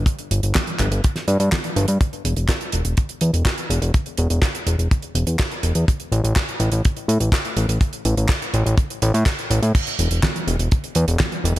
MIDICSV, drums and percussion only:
0, 0, Header, 1, 2, 480
1, 0, Start_track
1, 0, Tempo, 483871
1, 68, Time_signature, 4, 2, 24, 8
1, 11497, End_track
2, 0, Start_track
2, 0, Title_t, "Drums"
2, 59, Note_on_c, 9, 36, 120
2, 66, Note_on_c, 9, 42, 70
2, 159, Note_off_c, 9, 36, 0
2, 165, Note_off_c, 9, 42, 0
2, 184, Note_on_c, 9, 42, 42
2, 284, Note_off_c, 9, 42, 0
2, 309, Note_on_c, 9, 42, 107
2, 408, Note_off_c, 9, 42, 0
2, 428, Note_on_c, 9, 42, 67
2, 527, Note_off_c, 9, 42, 0
2, 544, Note_on_c, 9, 39, 98
2, 547, Note_on_c, 9, 38, 116
2, 552, Note_on_c, 9, 42, 78
2, 555, Note_on_c, 9, 36, 106
2, 643, Note_off_c, 9, 39, 0
2, 647, Note_off_c, 9, 38, 0
2, 652, Note_off_c, 9, 42, 0
2, 654, Note_off_c, 9, 36, 0
2, 667, Note_on_c, 9, 42, 42
2, 766, Note_off_c, 9, 42, 0
2, 786, Note_on_c, 9, 42, 100
2, 787, Note_on_c, 9, 36, 56
2, 788, Note_on_c, 9, 39, 67
2, 885, Note_off_c, 9, 42, 0
2, 886, Note_off_c, 9, 36, 0
2, 887, Note_off_c, 9, 39, 0
2, 909, Note_on_c, 9, 42, 73
2, 1008, Note_off_c, 9, 42, 0
2, 1030, Note_on_c, 9, 42, 66
2, 1036, Note_on_c, 9, 36, 116
2, 1130, Note_off_c, 9, 42, 0
2, 1135, Note_off_c, 9, 36, 0
2, 1146, Note_on_c, 9, 38, 38
2, 1149, Note_on_c, 9, 42, 47
2, 1245, Note_off_c, 9, 38, 0
2, 1248, Note_off_c, 9, 42, 0
2, 1267, Note_on_c, 9, 42, 86
2, 1366, Note_off_c, 9, 42, 0
2, 1388, Note_on_c, 9, 42, 70
2, 1488, Note_off_c, 9, 42, 0
2, 1505, Note_on_c, 9, 42, 72
2, 1510, Note_on_c, 9, 39, 91
2, 1511, Note_on_c, 9, 36, 102
2, 1513, Note_on_c, 9, 38, 113
2, 1604, Note_off_c, 9, 42, 0
2, 1609, Note_off_c, 9, 39, 0
2, 1610, Note_off_c, 9, 36, 0
2, 1612, Note_off_c, 9, 38, 0
2, 1627, Note_on_c, 9, 42, 47
2, 1726, Note_off_c, 9, 42, 0
2, 1750, Note_on_c, 9, 42, 94
2, 1849, Note_off_c, 9, 42, 0
2, 1863, Note_on_c, 9, 42, 67
2, 1962, Note_off_c, 9, 42, 0
2, 1991, Note_on_c, 9, 36, 123
2, 1991, Note_on_c, 9, 42, 62
2, 2090, Note_off_c, 9, 36, 0
2, 2090, Note_off_c, 9, 42, 0
2, 2113, Note_on_c, 9, 42, 43
2, 2212, Note_off_c, 9, 42, 0
2, 2232, Note_on_c, 9, 42, 99
2, 2331, Note_off_c, 9, 42, 0
2, 2346, Note_on_c, 9, 42, 60
2, 2445, Note_off_c, 9, 42, 0
2, 2466, Note_on_c, 9, 36, 119
2, 2466, Note_on_c, 9, 39, 93
2, 2468, Note_on_c, 9, 42, 69
2, 2472, Note_on_c, 9, 38, 120
2, 2565, Note_off_c, 9, 36, 0
2, 2565, Note_off_c, 9, 39, 0
2, 2567, Note_off_c, 9, 42, 0
2, 2571, Note_off_c, 9, 38, 0
2, 2588, Note_on_c, 9, 42, 45
2, 2687, Note_off_c, 9, 42, 0
2, 2702, Note_on_c, 9, 42, 97
2, 2802, Note_off_c, 9, 42, 0
2, 2825, Note_on_c, 9, 42, 68
2, 2924, Note_off_c, 9, 42, 0
2, 2946, Note_on_c, 9, 42, 65
2, 2953, Note_on_c, 9, 36, 122
2, 3045, Note_off_c, 9, 42, 0
2, 3052, Note_off_c, 9, 36, 0
2, 3066, Note_on_c, 9, 42, 47
2, 3165, Note_off_c, 9, 42, 0
2, 3183, Note_on_c, 9, 42, 102
2, 3282, Note_off_c, 9, 42, 0
2, 3311, Note_on_c, 9, 42, 73
2, 3410, Note_off_c, 9, 42, 0
2, 3426, Note_on_c, 9, 36, 110
2, 3428, Note_on_c, 9, 39, 96
2, 3429, Note_on_c, 9, 42, 65
2, 3436, Note_on_c, 9, 38, 114
2, 3526, Note_off_c, 9, 36, 0
2, 3527, Note_off_c, 9, 39, 0
2, 3528, Note_off_c, 9, 42, 0
2, 3535, Note_off_c, 9, 38, 0
2, 3548, Note_on_c, 9, 42, 42
2, 3648, Note_off_c, 9, 42, 0
2, 3675, Note_on_c, 9, 42, 95
2, 3774, Note_off_c, 9, 42, 0
2, 3791, Note_on_c, 9, 42, 75
2, 3890, Note_off_c, 9, 42, 0
2, 3909, Note_on_c, 9, 42, 65
2, 3911, Note_on_c, 9, 36, 121
2, 4008, Note_off_c, 9, 42, 0
2, 4011, Note_off_c, 9, 36, 0
2, 4026, Note_on_c, 9, 42, 42
2, 4126, Note_off_c, 9, 42, 0
2, 4141, Note_on_c, 9, 42, 89
2, 4241, Note_off_c, 9, 42, 0
2, 4268, Note_on_c, 9, 42, 66
2, 4367, Note_off_c, 9, 42, 0
2, 4381, Note_on_c, 9, 38, 111
2, 4384, Note_on_c, 9, 36, 116
2, 4391, Note_on_c, 9, 39, 91
2, 4396, Note_on_c, 9, 42, 72
2, 4480, Note_off_c, 9, 38, 0
2, 4483, Note_off_c, 9, 36, 0
2, 4490, Note_off_c, 9, 39, 0
2, 4495, Note_off_c, 9, 42, 0
2, 4512, Note_on_c, 9, 42, 47
2, 4611, Note_off_c, 9, 42, 0
2, 4629, Note_on_c, 9, 42, 93
2, 4728, Note_off_c, 9, 42, 0
2, 4754, Note_on_c, 9, 42, 61
2, 4853, Note_off_c, 9, 42, 0
2, 4874, Note_on_c, 9, 36, 127
2, 4874, Note_on_c, 9, 42, 69
2, 4973, Note_off_c, 9, 36, 0
2, 4973, Note_off_c, 9, 42, 0
2, 4984, Note_on_c, 9, 42, 48
2, 5084, Note_off_c, 9, 42, 0
2, 5111, Note_on_c, 9, 42, 102
2, 5210, Note_off_c, 9, 42, 0
2, 5226, Note_on_c, 9, 42, 69
2, 5326, Note_off_c, 9, 42, 0
2, 5344, Note_on_c, 9, 42, 63
2, 5348, Note_on_c, 9, 39, 85
2, 5352, Note_on_c, 9, 36, 120
2, 5353, Note_on_c, 9, 38, 123
2, 5443, Note_off_c, 9, 42, 0
2, 5448, Note_off_c, 9, 39, 0
2, 5451, Note_off_c, 9, 36, 0
2, 5452, Note_off_c, 9, 38, 0
2, 5471, Note_on_c, 9, 42, 40
2, 5570, Note_off_c, 9, 42, 0
2, 5587, Note_on_c, 9, 42, 92
2, 5686, Note_off_c, 9, 42, 0
2, 5705, Note_on_c, 9, 42, 65
2, 5804, Note_off_c, 9, 42, 0
2, 5834, Note_on_c, 9, 36, 127
2, 5838, Note_on_c, 9, 42, 65
2, 5933, Note_off_c, 9, 36, 0
2, 5938, Note_off_c, 9, 42, 0
2, 5950, Note_on_c, 9, 42, 46
2, 6049, Note_off_c, 9, 42, 0
2, 6074, Note_on_c, 9, 42, 88
2, 6173, Note_off_c, 9, 42, 0
2, 6195, Note_on_c, 9, 42, 65
2, 6294, Note_off_c, 9, 42, 0
2, 6307, Note_on_c, 9, 39, 93
2, 6309, Note_on_c, 9, 42, 61
2, 6310, Note_on_c, 9, 36, 118
2, 6314, Note_on_c, 9, 38, 121
2, 6406, Note_off_c, 9, 39, 0
2, 6408, Note_off_c, 9, 42, 0
2, 6409, Note_off_c, 9, 36, 0
2, 6413, Note_off_c, 9, 38, 0
2, 6435, Note_on_c, 9, 42, 41
2, 6534, Note_off_c, 9, 42, 0
2, 6546, Note_on_c, 9, 42, 88
2, 6645, Note_off_c, 9, 42, 0
2, 6663, Note_on_c, 9, 42, 69
2, 6762, Note_off_c, 9, 42, 0
2, 6792, Note_on_c, 9, 42, 65
2, 6798, Note_on_c, 9, 36, 119
2, 6891, Note_off_c, 9, 42, 0
2, 6897, Note_off_c, 9, 36, 0
2, 6910, Note_on_c, 9, 42, 42
2, 7009, Note_off_c, 9, 42, 0
2, 7034, Note_on_c, 9, 42, 101
2, 7133, Note_off_c, 9, 42, 0
2, 7147, Note_on_c, 9, 42, 65
2, 7246, Note_off_c, 9, 42, 0
2, 7261, Note_on_c, 9, 36, 116
2, 7272, Note_on_c, 9, 39, 96
2, 7275, Note_on_c, 9, 38, 127
2, 7279, Note_on_c, 9, 42, 70
2, 7361, Note_off_c, 9, 36, 0
2, 7371, Note_off_c, 9, 39, 0
2, 7374, Note_off_c, 9, 38, 0
2, 7378, Note_off_c, 9, 42, 0
2, 7388, Note_on_c, 9, 42, 40
2, 7488, Note_off_c, 9, 42, 0
2, 7506, Note_on_c, 9, 42, 89
2, 7605, Note_off_c, 9, 42, 0
2, 7629, Note_on_c, 9, 42, 73
2, 7728, Note_off_c, 9, 42, 0
2, 7746, Note_on_c, 9, 36, 115
2, 7750, Note_on_c, 9, 42, 60
2, 7845, Note_off_c, 9, 36, 0
2, 7849, Note_off_c, 9, 42, 0
2, 7865, Note_on_c, 9, 42, 45
2, 7964, Note_off_c, 9, 42, 0
2, 7986, Note_on_c, 9, 42, 94
2, 8085, Note_off_c, 9, 42, 0
2, 8109, Note_on_c, 9, 42, 60
2, 8208, Note_off_c, 9, 42, 0
2, 8219, Note_on_c, 9, 39, 90
2, 8223, Note_on_c, 9, 36, 121
2, 8229, Note_on_c, 9, 38, 123
2, 8230, Note_on_c, 9, 42, 59
2, 8318, Note_off_c, 9, 39, 0
2, 8323, Note_off_c, 9, 36, 0
2, 8329, Note_off_c, 9, 38, 0
2, 8329, Note_off_c, 9, 42, 0
2, 8355, Note_on_c, 9, 42, 47
2, 8454, Note_off_c, 9, 42, 0
2, 8469, Note_on_c, 9, 42, 82
2, 8568, Note_off_c, 9, 42, 0
2, 8596, Note_on_c, 9, 42, 68
2, 8695, Note_off_c, 9, 42, 0
2, 8705, Note_on_c, 9, 36, 127
2, 8713, Note_on_c, 9, 42, 65
2, 8804, Note_off_c, 9, 36, 0
2, 8812, Note_off_c, 9, 42, 0
2, 8832, Note_on_c, 9, 42, 49
2, 8932, Note_off_c, 9, 42, 0
2, 8949, Note_on_c, 9, 42, 90
2, 9048, Note_off_c, 9, 42, 0
2, 9072, Note_on_c, 9, 42, 70
2, 9171, Note_off_c, 9, 42, 0
2, 9185, Note_on_c, 9, 36, 127
2, 9186, Note_on_c, 9, 38, 117
2, 9188, Note_on_c, 9, 39, 86
2, 9192, Note_on_c, 9, 42, 59
2, 9284, Note_off_c, 9, 36, 0
2, 9285, Note_off_c, 9, 38, 0
2, 9287, Note_off_c, 9, 39, 0
2, 9291, Note_off_c, 9, 42, 0
2, 9311, Note_on_c, 9, 42, 40
2, 9410, Note_off_c, 9, 42, 0
2, 9430, Note_on_c, 9, 42, 91
2, 9530, Note_off_c, 9, 42, 0
2, 9549, Note_on_c, 9, 42, 72
2, 9648, Note_off_c, 9, 42, 0
2, 9671, Note_on_c, 9, 36, 118
2, 9672, Note_on_c, 9, 49, 106
2, 9678, Note_on_c, 9, 42, 70
2, 9770, Note_off_c, 9, 36, 0
2, 9771, Note_off_c, 9, 49, 0
2, 9777, Note_off_c, 9, 42, 0
2, 9791, Note_on_c, 9, 42, 46
2, 9890, Note_off_c, 9, 42, 0
2, 9910, Note_on_c, 9, 42, 102
2, 10010, Note_off_c, 9, 42, 0
2, 10028, Note_on_c, 9, 42, 60
2, 10127, Note_off_c, 9, 42, 0
2, 10148, Note_on_c, 9, 36, 110
2, 10149, Note_on_c, 9, 42, 64
2, 10150, Note_on_c, 9, 39, 91
2, 10152, Note_on_c, 9, 38, 116
2, 10247, Note_off_c, 9, 36, 0
2, 10248, Note_off_c, 9, 42, 0
2, 10249, Note_off_c, 9, 39, 0
2, 10251, Note_off_c, 9, 38, 0
2, 10276, Note_on_c, 9, 42, 45
2, 10375, Note_off_c, 9, 42, 0
2, 10392, Note_on_c, 9, 42, 93
2, 10492, Note_off_c, 9, 42, 0
2, 10510, Note_on_c, 9, 42, 73
2, 10609, Note_off_c, 9, 42, 0
2, 10629, Note_on_c, 9, 42, 65
2, 10634, Note_on_c, 9, 36, 118
2, 10728, Note_off_c, 9, 42, 0
2, 10733, Note_off_c, 9, 36, 0
2, 10751, Note_on_c, 9, 42, 50
2, 10850, Note_off_c, 9, 42, 0
2, 10862, Note_on_c, 9, 42, 105
2, 10962, Note_off_c, 9, 42, 0
2, 10989, Note_on_c, 9, 42, 72
2, 11088, Note_off_c, 9, 42, 0
2, 11105, Note_on_c, 9, 39, 89
2, 11108, Note_on_c, 9, 38, 126
2, 11109, Note_on_c, 9, 36, 118
2, 11111, Note_on_c, 9, 42, 73
2, 11204, Note_off_c, 9, 39, 0
2, 11207, Note_off_c, 9, 38, 0
2, 11209, Note_off_c, 9, 36, 0
2, 11210, Note_off_c, 9, 42, 0
2, 11231, Note_on_c, 9, 42, 42
2, 11330, Note_off_c, 9, 42, 0
2, 11361, Note_on_c, 9, 42, 105
2, 11460, Note_off_c, 9, 42, 0
2, 11497, End_track
0, 0, End_of_file